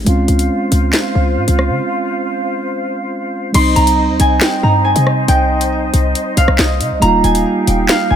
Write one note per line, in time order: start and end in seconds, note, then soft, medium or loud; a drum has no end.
0.04 0.27 C#2 loud
0.04 3.49 G#3 medium
0.04 3.50 C4 medium
0.04 3.51 C#4 medium
0.04 3.51 F4 medium
0.04 3.51 C5 medium
0.04 3.51 F5 medium
0.04 closed hi-hat medium
0.09 3.52 F4 medium
0.28 0.49 C#2 loud
0.28 closed hi-hat medium
0.39 closed hi-hat medium
0.72 0.93 C#2 loud
0.72 closed hi-hat medium
0.93 snare loud
0.93 clap medium
0.93 closed hi-hat medium
1.15 1.38 C#2 loud
1.37 1.47 G#2 loud
1.48 1.71 C#2 loud
1.48 closed hi-hat medium
1.59 cross-stick medium
1.70 1.80 C#3 loud
3.52 3.75 C2 loud
3.52 6.97 G3 medium
3.52 6.98 C4 medium
3.52 6.99 D#4 medium
3.52 6.99 C5 medium
3.52 6.99 D#5 medium
3.52 4.85 C6 loud
3.52 closed hi-hat medium
3.52 crash loud
3.57 6.99 D#4 medium
3.76 4.10 C2 loud
3.76 4.63 A#5 medium
3.76 closed hi-hat medium
3.87 closed hi-hat medium
4.09 4.19 D2 loud
4.20 4.41 C2 loud
4.20 4.47 G#5 medium
4.20 closed hi-hat medium
4.41 4.91 G5 medium
4.41 snare loud
4.41 clap medium
4.41 closed hi-hat medium
4.63 4.94 G2 loud
4.63 6.03 A#5 medium
4.85 5.34 G#5 medium
4.96 5.27 C3 medium
4.96 closed hi-hat medium
5.07 cross-stick medium
5.28 5.91 C2 loud
5.28 6.84 G5 loud
5.28 closed hi-hat medium
5.61 closed hi-hat medium
5.94 6.14 C2 loud
5.94 closed hi-hat medium
6.15 closed hi-hat medium
6.37 6.47 C2 loud
6.37 7.89 F5 medium
6.37 closed hi-hat medium
6.48 6.58 C2 loud
6.48 cross-stick loud
6.59 6.82 C2 loud
6.59 8.16 D#5 medium
6.59 snare loud
6.59 clap loud
6.81 6.93 C3 loud
6.81 closed hi-hat medium
6.91 7.02 C2 loud
7.00 7.23 D#1 loud
7.00 8.16 G3 medium
7.00 8.16 A#3 medium
7.00 8.16 D#4 medium
7.00 8.16 G4 medium
7.00 8.16 F5 medium
7.00 8.16 A#5 loud
7.00 closed hi-hat medium
7.04 8.16 F4 medium
7.24 7.45 D#1 loud
7.24 7.74 G#5 medium
7.24 closed hi-hat medium
7.35 closed hi-hat medium
7.67 7.88 D#1 loud
7.67 8.16 G5 medium
7.67 closed hi-hat medium
7.89 8.16 F5 medium
7.89 snare loud
7.89 clap loud
7.89 closed hi-hat medium
8.10 8.16 D#1 loud
8.10 8.16 G#5 medium